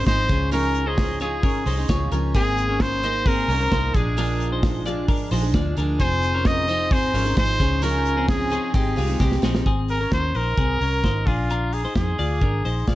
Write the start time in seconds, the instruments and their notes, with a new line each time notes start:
0.06 fingered electric bass G#1, steel-string acoustic guitar F3 C4 D#4 G#4, clean electric guitar D#4 C5, trumpet C5, kick, snare, hi-hat pedal, open hi-hat
0.28 fingered electric bass C#2, steel-string acoustic guitar F3 C#4 D#4 G#4, clean electric guitar C#4 G#4, kick, hi-hat pedal, open hi-hat
0.51 steel-string acoustic guitar C#3 F3 C#4 D#4 G#4, clean electric guitar C#4 A#4, trumpet A#4, hi-hat pedal, open hi-hat
0.74 hi-hat pedal, open hi-hat
0.86 clean electric guitar D#4 C5, trumpet G#4
0.98 kick, snare, hi-hat pedal, open hi-hat
1.20 steel-string acoustic guitar F3 C#4 D#4 G#4, clean electric guitar F4 C#5, trumpet G#4, hi-hat pedal, open hi-hat
1.43 clean electric guitar C#4 A#4, kick, hi-hat pedal, open hi-hat
1.65 fingered electric bass C2, steel-string acoustic guitar F3 C#4 D#4 G#4, clean electric guitar D#4 C5, hi-hat pedal, open hi-hat
1.77 steel-string acoustic guitar C#4 D#4 G#4
1.88 fingered electric bass C#2, steel-string acoustic guitar F3 C#4 D#4 G#4, clean electric guitar F4 C#5, kick, snare, hi-hat pedal, open hi-hat
2.12 fingered electric bass C#2, steel-string acoustic guitar F3 C#4 D#4 G#4, clean electric guitar C#4 A#4, hi-hat pedal, open hi-hat
2.34 fingered electric bass G#1, steel-string acoustic guitar G#3 A#3 D#4 G#4 C5, clean electric guitar C4 G#4, trumpet G#4, kick, hi-hat pedal, open hi-hat
2.57 hi-hat pedal, open hi-hat
2.69 clean electric guitar C#4 A#4
2.80 trumpet C5, kick, snare, hi-hat pedal, open hi-hat
3.03 steel-string acoustic guitar A#3 D#4 G#4 C5, clean electric guitar D#4 C5, hi-hat pedal, open hi-hat
3.26 clean electric guitar C4 G#4, trumpet A#4, kick, hi-hat pedal, open hi-hat
3.48 fingered electric bass C2, steel-string acoustic guitar A#3 D#4 G#4 C5, clean electric guitar C#4 A#4, hi-hat pedal, open hi-hat
3.60 steel-string acoustic guitar D#4 G#4 C5
3.71 fingered electric bass C2, steel-string acoustic guitar A#3 D#4 G#4 C5, clean electric guitar D#4 C5, kick, snare, hi-hat pedal, open hi-hat
3.94 fingered electric bass A#1, steel-string acoustic guitar F3 G#3 D4 G#4, clean electric guitar D4 G#4, trumpet G#4, kick, hi-hat pedal, open hi-hat
4.17 steel-string acoustic guitar A#2 F3 G#3 D4 G#4, clean electric guitar D4 A#4, hi-hat pedal, open hi-hat
4.40 hi-hat pedal, open hi-hat
4.52 clean electric guitar D#4 C5
4.63 kick, snare, hi-hat pedal, open hi-hat
4.85 steel-string acoustic guitar F3 G#3 D4 G#4, clean electric guitar F4 D5, hi-hat pedal, open hi-hat
5.08 clean electric guitar D4 A#4, kick, hi-hat pedal, open hi-hat
5.31 fingered electric bass A#1, steel-string acoustic guitar F3 G#3 D4 G#4, clean electric guitar D#4 C5, hi-hat pedal, open hi-hat
5.42 steel-string acoustic guitar G#3 D4 G#4
5.53 fingered electric bass D2, steel-string acoustic guitar F3 G#3 D4 G#4, clean electric guitar F4 D5, kick, snare, hi-hat pedal, open hi-hat
5.77 fingered electric bass D2, steel-string acoustic guitar F3 G#3 D4 G#4, clean electric guitar D4 A#4, hi-hat pedal, open hi-hat
6.00 fingered electric bass F1, steel-string acoustic guitar F3 C4 D#4 G#4, clean electric guitar C4 G#4, trumpet C5, kick, hi-hat pedal, open hi-hat
6.22 hi-hat pedal, open hi-hat
6.34 clean electric guitar C#4 A#4
6.45 trumpet D#5, kick, snare, hi-hat pedal, open hi-hat
6.68 steel-string acoustic guitar F3 C4 D#4 G#4, clean electric guitar D#4 C5, hi-hat pedal, open hi-hat
6.91 clean electric guitar C4 G#4, trumpet C5, kick, hi-hat pedal, open hi-hat
7.13 fingered electric bass G#1, steel-string acoustic guitar F3 C4 D#4 G#4, clean electric guitar C#4 A#4, hi-hat pedal, open hi-hat
7.25 steel-string acoustic guitar C4 D#4 G#4
7.36 fingered electric bass G#1, steel-string acoustic guitar F3 C4 D#4 G#4, clean electric guitar D#4 C5, trumpet C5, kick, snare, hi-hat pedal, open hi-hat
7.59 fingered electric bass C#2, steel-string acoustic guitar F3 C#4 D#4 G#4, clean electric guitar C#4 G#4, kick, hi-hat pedal, open hi-hat
7.82 steel-string acoustic guitar C#3 F3 C#4 D#4 G#4, clean electric guitar C#4 A#4, trumpet A#4, hi-hat pedal, open hi-hat
8.05 hi-hat pedal, open hi-hat
8.17 clean electric guitar C4 G#4
8.28 trumpet G#4, kick, snare, hi-hat pedal, open hi-hat
8.50 steel-string acoustic guitar F3 C#4 D#4 G#4, clean electric guitar C4 G#4, hi-hat pedal, open hi-hat
8.74 fingered electric bass G#1, steel-string acoustic guitar G#3 C4 D#4 G4, clean electric guitar C4 G4, trumpet G#4, kick, hi-hat pedal, open hi-hat
8.96 fingered electric bass C2, steel-string acoustic guitar G#3 C4 D#4 G4, clean electric guitar G#3 F4, hi-hat pedal, open hi-hat
9.08 steel-string acoustic guitar C4 D#4 G4
9.19 fingered electric bass C2, steel-string acoustic guitar G#3 C4 D#4 G4, clean electric guitar C4 G4, kick, snare
9.32 snare
9.42 fingered electric bass A#1, steel-string acoustic guitar G#3 C4 D#4 G4, clean electric guitar C4 G#4, snare
9.55 snare
9.66 fingered electric bass G#1, clean electric guitar C4 G#4, kick, closed hi-hat
9.88 trumpet A#4, open hi-hat
10.01 clean electric guitar C#4 A#4
10.12 fingered electric bass D#2, trumpet C5, kick, snare, closed hi-hat
10.35 fingered electric bass A#1, clean electric guitar D#4 C5, trumpet A#4, open hi-hat
10.57 fingered electric bass C2, clean electric guitar C4 G#4, kick, closed hi-hat
10.81 fingered electric bass C2, clean electric guitar C#4 A#4, open hi-hat
11.04 fingered electric bass G#1, clean electric guitar D#4 C5, kick, snare, closed hi-hat
11.27 fingered electric bass A#1, clean electric guitar D4 G#4, trumpet F4, kick, open hi-hat
11.50 clean electric guitar D4 A#4, closed hi-hat
11.73 trumpet G#4, open hi-hat
11.85 clean electric guitar D#4 C5
11.95 fingered electric bass F2, trumpet G#4, kick, snare, closed hi-hat
12.19 fingered electric bass D2, clean electric guitar F4 D5, open hi-hat
12.41 fingered electric bass G#1, clean electric guitar D4 A#4, kick, closed hi-hat
12.65 fingered electric bass A#1, clean electric guitar D#4 C5, open hi-hat
12.87 fingered electric bass A#1, clean electric guitar F4 D5, kick, snare, closed hi-hat